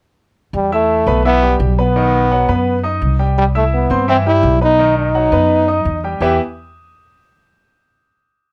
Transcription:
0.53 E2 G3
0.72 A3 E4 E5 E6
1.07 B1 B3 B4 B5
1.25 E3 B3 E4 E5
1.42 G3 G4 G5
1.60 B1
1.78 B3 B4 B5
1.96 D#3 D#4 D#5
2.31 F#3 F#4 F#5
2.48 F#2 B3 B4 B5
2.83 D#4 D#5 D#6
3.01 C2
3.19 G3 G4 G5
3.38 G3
3.55 A3 E4 E5 E6
3.74 B3
3.90 G2 C4 C5 C6
4.08 E3 C4 E4 E5
4.26 G3 E4 G4 G5
4.43 B1
4.61 B3 D#4 B4 B5
4.79 D#3 D#4 D#5
4.98 D#4
5.15 F#3 F#4 F#5
5.32 F#2 B3 B4 B5
5.68 D#4 D#5 D#6
5.85 E2
6.04 G3 G4 G5
6.20 E2 E3 B3 E4 G4 B4 E5

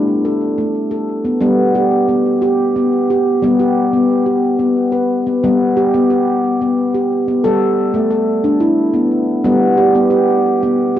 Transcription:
Already playing: G3 D4
0.25 A4
0.58 A3
0.91 A4
1.25 B3
1.41 G3 B3
1.75 G4
2.09 B3
2.42 G4
2.76 B3
3.10 G4
3.42 G3 B3
3.60 G4
3.93 B3
4.26 G4
4.59 B3
4.92 B4
5.27 B3
5.44 G3 B3
5.77 G4
5.94 B3
6.10 G4
6.61 B3
6.94 G4
7.28 B3
7.44 G3 A4
7.94 A3
8.11 A4
8.44 D4
8.61 E4
8.94 B3
9.44 G3 B3
9.77 G4
9.95 B3
10.10 G4
10.63 B3

